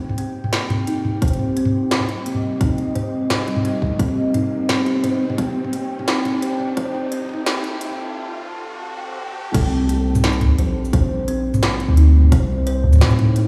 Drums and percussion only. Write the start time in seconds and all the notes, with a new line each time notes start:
0.09 mid tom
0.18 closed hi-hat
0.44 mid tom
0.53 snare, closed hi-hat
0.70 closed hi-hat, mid tom
0.87 closed hi-hat
1.05 mid tom
1.22 kick, closed hi-hat
1.28 closed hi-hat
1.33 closed hi-hat
1.39 mid tom
1.57 closed hi-hat
1.65 mid tom
1.91 snare, closed hi-hat
2.00 mid tom
2.09 closed hi-hat
2.26 closed hi-hat
2.35 mid tom
2.61 kick, closed hi-hat, mid tom
2.78 closed hi-hat
2.95 closed hi-hat, mid tom
3.30 snare, closed hi-hat, mid tom
3.48 closed hi-hat
3.56 mid tom
3.65 closed hi-hat
3.82 kick
3.87 mid tom
3.99 kick, closed hi-hat
4.08 mid tom
4.34 closed hi-hat, mid tom
4.69 snare, closed hi-hat, mid tom
4.86 closed hi-hat
5.04 closed hi-hat, mid tom
5.30 mid tom
5.38 kick, closed hi-hat
5.64 mid tom
5.73 closed hi-hat
5.99 mid tom
6.08 snare, closed hi-hat
6.25 closed hi-hat, mid tom
6.42 closed hi-hat
6.60 mid tom
6.77 kick, closed hi-hat
6.94 mid tom
7.12 closed hi-hat
7.21 mid tom
7.25 mid tom
7.29 mid tom
7.34 mid tom
7.46 snare, closed hi-hat
7.55 mid tom
7.64 closed hi-hat
7.81 closed hi-hat
7.90 mid tom
9.54 kick, closed hi-hat, crash
9.89 closed hi-hat
10.15 mid tom, shaker
10.24 snare, closed hi-hat
10.33 shaker
10.41 closed hi-hat, mid tom
10.58 closed hi-hat
10.85 shaker
10.93 kick, closed hi-hat
11.28 closed hi-hat
11.54 mid tom, shaker
11.63 snare, closed hi-hat
11.80 closed hi-hat
11.97 closed hi-hat
12.23 mid tom
12.32 kick, closed hi-hat
12.67 closed hi-hat
12.93 mid tom, shaker
12.96 mid tom
12.98 snare, closed hi-hat, mid tom
13.01 mid tom
13.04 mid tom
13.10 shaker
13.19 closed hi-hat, mid tom
13.36 closed hi-hat